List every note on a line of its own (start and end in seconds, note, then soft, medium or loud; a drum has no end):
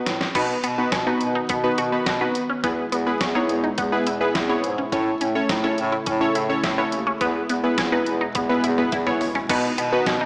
0.06 0.27 A2 medium
0.06 snare medium
0.06 closed hi-hat medium
0.21 snare medium
0.35 0.55 B2 loud
0.35 2.61 D#3 medium
0.35 2.61 B3 medium
0.35 0.54 B3 medium
0.35 0.57 B3 medium
0.35 0.57 D#4 medium
0.35 2.61 F#4 medium
0.35 0.57 F#4 medium
0.35 0.57 B4 medium
0.35 kick loud
0.35 closed hi-hat medium
0.35 crash medium
0.64 0.84 B2 loud
0.64 0.82 B3 medium
0.64 closed hi-hat medium
0.78 0.93 B3 medium
0.78 0.93 D#4 medium
0.78 0.93 F#4 medium
0.78 0.93 B4 medium
0.92 1.12 B2 loud
0.92 1.02 C#4 medium
0.92 kick loud
0.92 snare loud
0.92 closed hi-hat medium
1.07 1.36 B3 medium
1.07 1.36 D#4 medium
1.07 1.25 D#4 medium
1.07 1.36 F#4 medium
1.07 1.36 B4 medium
1.21 1.41 B2 medium
1.21 closed hi-hat medium
1.35 1.45 D#4 medium
1.49 1.70 B2 loud
1.49 1.68 B3 medium
1.49 kick loud
1.49 closed hi-hat medium
1.64 1.79 B3 medium
1.64 1.79 D#4 medium
1.64 1.79 F#4 medium
1.64 1.79 B4 loud
1.78 1.98 B2 loud
1.78 1.97 F#4 medium
1.78 closed hi-hat medium
1.92 2.07 B3 medium
1.92 2.07 D#4 medium
1.92 2.07 F#4 medium
1.92 2.07 B4 medium
2.06 2.27 B2 loud
2.06 2.16 F#4 medium
2.06 kick loud
2.06 snare loud
2.06 closed hi-hat medium
2.21 2.39 B3 medium
2.21 2.43 B3 medium
2.21 2.43 D#4 medium
2.21 2.43 F#4 medium
2.21 2.43 B4 medium
2.35 closed hi-hat medium
2.49 2.59 C#4 medium
2.64 2.84 E2 loud
2.64 4.90 B2 medium
2.64 4.90 G#3 medium
2.64 2.86 B3 medium
2.64 2.82 B3 medium
2.64 9.45 E4 medium
2.64 2.86 E4 medium
2.64 2.86 G#4 medium
2.64 2.86 B4 medium
2.64 kick loud
2.64 closed hi-hat medium
2.92 3.12 E2 loud
2.92 3.11 B3 medium
2.92 closed hi-hat medium
3.06 3.21 B3 medium
3.06 3.21 E4 medium
3.06 3.21 G#4 medium
3.06 3.21 B4 medium
3.21 3.41 E2 loud
3.21 3.30 C#4 medium
3.21 kick loud
3.21 snare loud
3.21 closed hi-hat medium
3.35 3.65 B3 medium
3.35 3.54 D#4 medium
3.35 3.65 E4 medium
3.35 3.65 G#4 medium
3.35 3.65 C#5 medium
3.49 3.70 E2 loud
3.49 closed hi-hat medium
3.64 3.73 D#4 medium
3.78 3.98 E2 loud
3.78 3.97 B3 medium
3.78 kick loud
3.78 closed hi-hat medium
3.92 4.07 B3 medium
3.92 4.07 E4 medium
3.92 4.07 G#4 medium
3.92 4.07 B4 medium
4.07 4.27 E2 medium
4.07 4.25 E4 medium
4.07 closed hi-hat medium
4.21 4.36 B3 medium
4.21 4.36 E4 medium
4.21 4.36 G#4 medium
4.21 4.36 B4 medium
4.35 4.55 E2 loud
4.35 4.45 E4 medium
4.35 kick loud
4.35 snare loud
4.35 closed hi-hat medium
4.49 4.72 B3 medium
4.49 4.68 B3 medium
4.49 4.72 E4 medium
4.49 4.72 G#4 medium
4.49 4.72 C#5 medium
4.64 4.84 G#2 medium
4.64 closed hi-hat medium
4.78 4.87 C#4 medium
4.92 5.12 A2 loud
4.92 7.19 C#3 medium
4.92 7.19 A3 medium
4.92 5.15 C#4 medium
4.92 5.11 C#4 loud
4.92 5.15 E4 medium
4.92 5.15 A4 medium
4.92 5.15 C#5 medium
4.92 kick loud
4.92 closed hi-hat medium
5.21 5.41 A2 loud
5.21 5.40 C#4 medium
5.21 closed hi-hat medium
5.35 5.50 C#4 medium
5.35 5.50 E4 medium
5.35 5.50 A4 medium
5.35 5.50 C#5 loud
5.49 5.69 A2 loud
5.49 5.59 D#4 medium
5.49 kick loud
5.49 snare loud
5.49 closed hi-hat medium
5.64 5.93 C#4 medium
5.64 5.93 E4 medium
5.64 5.82 E4 medium
5.64 5.93 A4 medium
5.64 5.93 C#5 medium
5.78 5.98 A2 loud
5.78 closed hi-hat medium
5.92 6.02 E4 medium
6.06 6.27 A2 loud
6.06 6.25 C#4 medium
6.06 kick loud
6.06 closed hi-hat medium
6.21 6.36 C#4 medium
6.21 6.36 E4 medium
6.21 6.36 A4 medium
6.21 6.36 C#5 loud
6.35 6.55 A2 loud
6.35 6.54 E4 medium
6.35 closed hi-hat medium
6.49 6.64 C#4 medium
6.49 6.64 E4 medium
6.49 6.64 A4 medium
6.49 6.64 C#5 medium
6.64 6.84 A2 loud
6.64 6.73 E4 medium
6.64 kick loud
6.64 snare loud
6.64 closed hi-hat medium
6.78 6.97 B3 medium
6.78 7.00 C#4 medium
6.78 7.00 E4 medium
6.78 7.00 A4 medium
6.78 7.00 C#5 medium
6.92 7.12 D#2 medium
6.92 closed hi-hat medium
7.07 7.16 C#4 medium
7.21 7.41 E2 loud
7.21 9.47 B2 medium
7.21 9.47 G#3 medium
7.21 7.43 B3 medium
7.21 7.40 B3 loud
7.21 7.43 E4 medium
7.21 7.43 G#4 medium
7.21 7.43 B4 medium
7.21 kick loud
7.21 closed hi-hat medium
7.49 7.69 E2 medium
7.49 7.68 B3 medium
7.49 closed hi-hat medium
7.64 7.78 B3 medium
7.64 7.79 E4 medium
7.64 7.79 G#4 medium
7.64 7.79 B4 medium
7.78 7.98 E2 medium
7.78 7.87 C#4 medium
7.78 kick loud
7.78 snare loud
7.78 closed hi-hat medium
7.92 8.22 B3 medium
7.92 8.11 D#4 medium
7.92 8.22 E4 medium
7.92 8.22 G#4 medium
7.92 8.22 B4 loud
8.06 8.27 E2 loud
8.06 closed hi-hat medium
8.21 8.30 D#4 medium
8.35 8.55 E2 loud
8.35 8.54 B3 medium
8.35 kick loud
8.35 closed hi-hat medium
8.35 high tom medium
8.49 8.64 B3 medium
8.49 8.64 E4 medium
8.49 8.64 G#4 medium
8.49 8.64 B4 loud
8.49 high tom medium
8.64 8.84 E2 loud
8.64 8.82 E4 medium
8.64 closed hi-hat medium
8.64 mid tom medium
8.78 8.93 B3 medium
8.78 8.93 E4 medium
8.78 8.93 G#4 medium
8.78 8.93 B4 medium
8.78 mid tom medium
8.92 9.12 E2 loud
8.92 9.02 E4 medium
8.92 kick loud
8.92 closed hi-hat medium
8.92 mid tom medium
9.06 9.29 B3 medium
9.06 9.25 B3 medium
9.06 9.29 E4 medium
9.06 9.29 G#4 medium
9.06 9.29 C#5 medium
9.06 mid tom medium
9.21 floor tom loud
9.21 open hi-hat medium
9.35 9.44 C#4 medium
9.35 floor tom medium
9.49 9.70 B2 loud
9.49 10.26 D#3 medium
9.49 10.26 B3 medium
9.49 9.72 B3 medium
9.49 9.68 B3 loud
9.49 9.72 D#4 medium
9.49 10.26 F#4 medium
9.49 9.72 F#4 medium
9.49 9.72 B4 medium
9.49 kick loud
9.49 closed hi-hat medium
9.49 crash loud
9.78 9.98 B2 loud
9.78 9.97 B3 medium
9.78 closed hi-hat medium
9.92 10.15 B3 medium
9.92 10.15 D#4 medium
9.92 10.15 F#4 medium
9.92 10.15 B4 medium
10.06 10.26 B2 loud
10.06 10.16 C#4 medium
10.06 kick loud
10.06 snare loud
10.06 closed hi-hat medium
10.21 10.26 D#4 medium